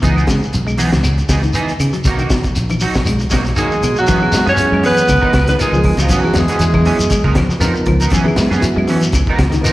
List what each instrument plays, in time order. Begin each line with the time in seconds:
0.02 fingered electric bass C#2, clean electric guitar E3 B3 D#4 G#4, muted clean electric guitar stroke, kick, closed hi-hat, shekere
0.16 clean electric guitar B3 D#4 G#4, claves, shekere
0.27 fingered electric bass C#3, clean electric guitar G#3, muted clean electric guitar stroke, kick, snare, closed hi-hat, shekere
0.43 muted fingered electric bass stroke, shekere
0.53 fingered electric bass B1, muted clean electric guitar stroke, closed hi-hat, shekere
0.67 clean electric guitar G#3, muted clean electric guitar stroke, claves, shekere
0.78 clean electric guitar E3 B3 D#4 G#4, open hi-hat, shekere
0.92 fingered electric bass C#2, muted clean electric guitar stroke, snare, closed hi-hat, shekere
1.03 clean electric guitar C#3, closed hi-hat, claves, shekere
1.18 muted clean electric guitar stroke, closed hi-hat, shekere
1.29 fingered electric bass C#2, clean electric guitar E3 B3 D#4 G#4, kick, snare, closed hi-hat, claves, shekere
1.43 clean electric guitar D#3, muted clean electric guitar stroke, closed hi-hat, shekere
1.54 clean electric guitar E3 B3 D#4 G#4, closed hi-hat, shekere
1.68 closed hi-hat, shekere
1.80 fingered electric bass C#3, muted clean electric guitar stroke, closed hi-hat, claves, shekere
1.93 clean electric guitar F#3, muted clean electric guitar stroke, closed hi-hat, shekere
2.04 fingered electric bass B1, clean electric guitar F#3 A#3 D#4 F#4, kick, snare, closed hi-hat, shekere
2.18 clean electric guitar D#3 F#4, closed hi-hat, claves, shekere
2.22 clean electric guitar A#3 D#4
2.30 fingered electric bass B2, clean electric guitar F#3, muted clean electric guitar stroke, kick, snare, closed hi-hat, shekere
2.44 muted fingered electric bass stroke, kick, closed hi-hat, shekere
2.56 fingered electric bass A#1, muted clean electric guitar stroke, closed hi-hat, shekere
2.69 clean electric guitar E3, muted clean electric guitar stroke, closed hi-hat, claves, shekere
2.80 clean electric guitar F#3 D#4 F#4, muted clean electric guitar stroke, open hi-hat, shekere
2.94 fingered electric bass B1, muted clean electric guitar stroke, kick, snare, closed hi-hat, shekere
3.06 clean electric guitar G#3, closed hi-hat, claves, shekere
3.19 muted clean electric guitar stroke, closed hi-hat, shekere
3.30 fingered electric bass B1, clean electric guitar F#3 A#3 D#4 F#4, kick, snare, closed hi-hat, claves, shekere
3.45 muted clean electric guitar stroke, snare, closed hi-hat, shekere
3.56 clean electric guitar D#3 F#3 A#3 D#4 F#4, trombone G#3, alto saxophone G#4, closed hi-hat, shekere
3.71 shekere
3.83 fingered electric bass B2, clean electric guitar F#3, muted clean electric guitar stroke, closed hi-hat, claves, shekere
3.96 trombone F#3, alto saxophone F#4, muted clean electric guitar stroke, shekere
4.07 fingered electric bass F#2, clean electric guitar E3 B3 C#4 G#4, kick, closed hi-hat, shekere
4.21 reed electric piano B3 E4 G#4, muted clean electric guitar stroke, claves
4.31 clean electric guitar G#3, muted clean electric guitar stroke, snare, closed hi-hat, shekere
4.45 fingered electric bass F#2, clean electric guitar B3 C#4 G#4, alto saxophone C#5, snare, shekere
4.52 trombone C#4
4.57 reed electric piano B3 E4 G#4, closed hi-hat, shekere
4.70 fingered electric bass F#2, clean electric guitar G#3, muted clean electric guitar stroke, claves
4.82 clean electric guitar E3 B3 C#4 G#4, alto saxophone B4, open hi-hat, shekere
4.86 trombone B3
4.96 muted clean electric guitar stroke, closed hi-hat, shekere
5.08 fingered electric bass C#2, clean electric guitar C#3, muted clean electric guitar stroke, kick, closed hi-hat, claves, shekere
5.21 clean electric guitar F3 B3 D#4 A#4, muted fingered electric bass stroke, kick
5.33 fingered electric bass C#2, muted clean electric guitar stroke, kick, snare, closed hi-hat, claves
5.47 clean electric guitar D#3, alto saxophone B4, snare, closed hi-hat, shekere
5.52 trombone B3
5.58 reed electric piano B3 D#4 F4 A#4, clean electric guitar B3 D#4 A#4, alto saxophone G#4, muted clean electric guitar stroke, closed hi-hat, shekere
5.63 trombone G#3
5.73 fingered electric bass C#2, clean electric guitar F3, muted clean electric guitar stroke, shekere
5.83 muted clean electric guitar stroke, kick, open hi-hat, claves
5.97 fingered electric bass C#2, clean electric guitar F#3 B3 D#4 A#4, snare, closed hi-hat, shekere
6.01 trombone F3, alto saxophone F4
6.08 fingered electric bass F#2, clean electric guitar E3 B3 C#4 G#4, kick, closed hi-hat, shekere
6.14 trombone F#3, alto saxophone F#4
6.23 clean electric guitar E3, reed electric piano B3 E4 G#4, muted clean electric guitar stroke, claves
6.33 fingered electric bass E2, clean electric guitar F#3, muted clean electric guitar stroke, snare, closed hi-hat, shekere
6.39 trombone G#3, alto saxophone G#4
6.48 clean electric guitar E3 B3 C#4 G#4, snare, closed hi-hat, shekere
6.59 fingered electric bass E2, reed electric piano B3 E4 G#4, closed hi-hat, shekere
6.74 clean electric guitar E3, muted clean electric guitar stroke, kick, claves
6.85 clean electric guitar E3 F#3 B3 C#4 G#4, open hi-hat, shekere
6.99 fingered electric bass F#2, muted clean electric guitar stroke, closed hi-hat, shekere
7.09 clean electric guitar G#3, muted clean electric guitar stroke, muted fingered electric bass stroke, kick, closed hi-hat, claves, shekere
7.24 fingered electric bass C#2, clean electric guitar F3 B3 A#4, kick
7.35 clean electric guitar F3, muted clean electric guitar stroke, kick, snare, closed hi-hat, claves
7.49 muted fingered electric bass stroke, snare, shekere
7.60 fingered electric bass F2, clean electric guitar C#3 F3 B3 D#4 A#4, reed electric piano B3 D#4 F4 A#4, snare, closed hi-hat, shekere
7.75 muted clean electric guitar stroke, shekere
7.86 fingered electric bass C#2, clean electric guitar F3, muted clean electric guitar stroke, kick, closed hi-hat, claves
8.00 clean electric guitar B3 D#4 A#4, closed hi-hat, shekere
8.10 fingered electric bass F#2, clean electric guitar E3 B3 C#4 G#4, kick, closed hi-hat, shekere
8.24 reed electric piano B3 E4 G#4, muted clean electric guitar stroke, claves
8.36 clean electric guitar G#3, muted clean electric guitar stroke, snare, closed hi-hat, shekere
8.51 fingered electric bass F#2, clean electric guitar E3 B3 C#4 G#4, snare, shekere
8.61 reed electric piano B3 E4 F#4, closed hi-hat, shekere
8.76 fingered electric bass F#2, clean electric guitar G#3, muted clean electric guitar stroke, claves
8.87 clean electric guitar E3 B3 C#4, snare, open hi-hat, shekere
9.01 muted clean electric guitar stroke, closed hi-hat, shekere
9.12 fingered electric bass C#2, clean electric guitar C#3, muted clean electric guitar stroke, kick, closed hi-hat, claves, shekere
9.27 clean electric guitar F3 B3 D#4 A#4, kick
9.39 fingered electric bass C#2, muted clean electric guitar stroke, kick, snare, closed hi-hat, claves
9.52 clean electric guitar D#3, snare, closed hi-hat, shekere
9.61 clean electric guitar F3 B3 D#4 A#4, reed electric piano B3 D#4 F4 A#4, snare, closed hi-hat, shekere